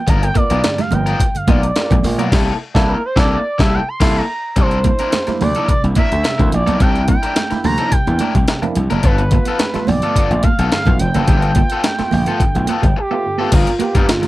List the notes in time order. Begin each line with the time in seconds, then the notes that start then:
Already playing: G5
0.07 G1 G2 D3 B3 F4 A#4 A#5, kick, closed hi-hat, muted conga
0.22 F4 A#4 G5, muted clean electric guitar stroke, closed hi-hat, muted conga
0.35 A#3 B3 F4 A#4 D5, muted overdriven electric guitar stroke, kick, closed hi-hat
0.50 B1 B3 F4 A#4, closed hi-hat
0.64 G2 D3, muted clean electric guitar stroke, muted overdriven electric guitar stroke, snare, closed hi-hat, muted conga, high conga
0.78 G3 F5, muted overdriven electric guitar stroke, snare, closed hi-hat, high conga
0.91 G1 A#3 B3 F4 A#4 G5, closed hi-hat, low conga
1.06 B3 F4 A#4, closed hi-hat
1.20 F4 A#4, muted overdriven electric guitar stroke, kick, closed hi-hat, muted conga
1.34 G2 D3 F5, closed hi-hat, muted conga
1.47 B1 A#3 B3 F4 A#4 D5, kick, closed hi-hat, high conga
1.63 muted overdriven electric guitar stroke, closed hi-hat
1.76 F4 A#4, muted overdriven electric guitar stroke, snare, closed hi-hat, muted conga, high conga
1.90 B1 G2 D3 B3, muted overdriven electric guitar stroke, kick, closed hi-hat, muted conga, high conga, low conga
2.03 A#1 F4 A#4, muted clean electric guitar stroke, open hi-hat, low conga
2.18 B1 A#3 B3 F4 A#4, closed hi-hat
2.32 C2 C3 G3 A#3 E4 A4, kick, snare, crash
2.74 C2 A#3 D4 E4 A4, kick, snare
2.89 A#4
3.05 C5
3.16 C2 A#3 D4 E4 A4 D5, kick, snare
3.33 D5
3.59 C2 C3 G3 A#3 E4 A4 E5, kick, snare
3.74 G5
3.88 C6
4.00 C2 A#3 E4 A4, kick, snare, crash
4.17 A#5
4.56 C2 C3 G3 D4 E4 A#4 C5, kick, closed hi-hat, muted conga
4.71 muted clean electric guitar stroke, closed hi-hat, muted conga
4.84 A#3 D4 E4 C5, muted overdriven electric guitar stroke, kick, closed hi-hat
4.99 C4 D4 E4 A#4, closed hi-hat
5.12 muted overdriven electric guitar stroke, muted clean electric guitar stroke, snare, closed hi-hat, muted conga, high conga
5.27 G3 A#3 D4 E4, muted overdriven electric guitar stroke, muted slap bass stroke, snare, closed hi-hat, muted conga, high conga
5.41 D2 C3 G3 A#3 D5, open hi-hat, low conga
5.55 A#3 D4 E4 A#4, closed hi-hat
5.68 C3 G3 D5, muted overdriven electric guitar stroke, kick, closed hi-hat
5.84 C2 A#3 D4 E4, closed hi-hat, muted conga
5.95 A#3 D4 E4 A#4 E5, kick, closed hi-hat, high conga
6.12 D2, muted overdriven electric guitar stroke, closed hi-hat
6.24 C3 G3, muted overdriven electric guitar stroke, snare, closed hi-hat, high conga
6.38 D2 A#3 C4 D4 E4, muted overdriven electric guitar stroke, kick, closed hi-hat, muted conga, high conga, low conga
6.52 A#1 D4 E4 D5, muted clean electric guitar stroke, closed hi-hat, low conga
6.67 B1 A#3 D4 E4 A#4, closed hi-hat
6.80 C2 C3 G3 C4 D4 E4 A#4 G5, kick, closed hi-hat, muted conga
6.95 muted clean electric guitar stroke, closed hi-hat, muted conga
7.08 A#3 D4 E4 G5, muted overdriven electric guitar stroke, kick, closed hi-hat
7.23 D4 E4 A#4, closed hi-hat
7.35 muted overdriven electric guitar stroke, muted clean electric guitar stroke, snare, closed hi-hat, high conga
7.51 A#3 D4 E4, muted overdriven electric guitar stroke, muted slap bass stroke, snare, closed hi-hat, muted conga, high conga
7.64 D2 C3 G3 A#3 A#5, open hi-hat, low conga
7.78 A#3 C4 D4 E4 A#4, closed hi-hat
7.91 C3 G3 G5, muted clean electric guitar stroke, muted overdriven electric guitar stroke, kick, closed hi-hat
8.07 E2 A#3 D4 E4, closed hi-hat, muted conga
8.19 A#3 D4 E4 A#4, closed hi-hat, high conga
8.35 C2 G3, muted overdriven electric guitar stroke, kick, closed hi-hat
8.48 C3 G3, muted overdriven electric guitar stroke, snare, closed hi-hat, muted conga, high conga
8.62 A#3 C4 D4 E4, muted overdriven electric guitar stroke, closed hi-hat, high conga, low conga
8.75 C2 D4 E4, muted clean electric guitar stroke, closed hi-hat, low conga
8.90 F#1 A#3 D4 E4 A#4, closed hi-hat
9.03 G1 G2 D3 B3 F4 A4 B4, kick, closed hi-hat, muted conga
9.18 muted clean electric guitar stroke, closed hi-hat, muted conga
9.31 A#3 B3 F4 B4, muted overdriven electric guitar stroke, kick, closed hi-hat
9.45 B3 F4 A4, closed hi-hat
9.59 muted clean electric guitar stroke, muted overdriven electric guitar stroke, snare, closed hi-hat, high conga
9.74 G3 A3 B3 F4, muted slap bass stroke, muted overdriven electric guitar stroke, snare, closed hi-hat, muted conga, high conga
9.87 B1 G2 D3 A#3 D5, open hi-hat, low conga
10.02 A3 B3 F4 A4, closed hi-hat
10.15 G2 D3 B3 F4 A4, kick, closed hi-hat, muted conga
10.31 A#1 A3 B3 F4, closed hi-hat, muted conga
10.43 A#3 B3 F4 F5, muted overdriven electric guitar stroke, kick, closed hi-hat, high conga
10.59 B1 B3 F4 A4, closed hi-hat
10.71 G2 D3 F5, muted overdriven electric guitar stroke, snare, closed hi-hat, muted conga, high conga
10.86 B1 A3 B3 F4, muted overdriven electric guitar stroke, kick, closed hi-hat, muted conga, high conga, low conga
10.99 F1 B3 F4 G5, muted clean electric guitar stroke, closed hi-hat, low conga
11.14 F#1 A#3 B3 F4 A4, closed hi-hat
11.27 G1 G2 D3 G3 B3 F4 A4, kick, closed hi-hat, muted conga
11.42 muted clean electric guitar stroke, closed hi-hat, muted conga
11.55 A#3 B3 F4, muted overdriven electric guitar stroke, kick, closed hi-hat
11.70 B3 F4 A4, closed hi-hat
11.84 muted clean electric guitar stroke, muted overdriven electric guitar stroke, snare, closed hi-hat, high conga
11.98 A3 B3 F4, muted overdriven electric guitar stroke, muted slap bass stroke, snare, closed hi-hat, muted conga, high conga
12.11 A#1 G2 D3 A#3, open hi-hat, low conga
12.26 A3 B3 F4 A4, closed hi-hat
12.40 G2 D3, muted clean electric guitar stroke, muted overdriven electric guitar stroke, kick, closed hi-hat, muted conga
12.55 B1 A3 B3 F4, closed hi-hat, muted conga
12.67 A#3 B3 F4 A4, closed hi-hat, high conga
12.82 G1 G3, muted overdriven electric guitar stroke, kick, closed hi-hat
12.97 G4, muted overdriven electric guitar stroke
13.11 A3 B3 F4, muted overdriven electric guitar stroke
13.24 G2 D3, muted clean electric guitar stroke
13.38 A3 B3 F4 A4
13.51 G1 G2 D3 B3 F4 A#4, kick, closed hi-hat, crash, muted conga
13.67 B3 F4, muted clean electric guitar stroke, closed hi-hat, muted conga
13.79 A#3 B3 F4 G4, muted overdriven electric guitar stroke, muted slap bass stroke, closed hi-hat
13.95 G2 B3 F4 A#4, kick, closed hi-hat
14.08 G2 D3 F4, muted clean electric guitar stroke, muted overdriven electric guitar stroke, snare, closed hi-hat, muted conga, high conga
14.22 G3, muted overdriven electric guitar stroke, snare, closed hi-hat, muted conga, high conga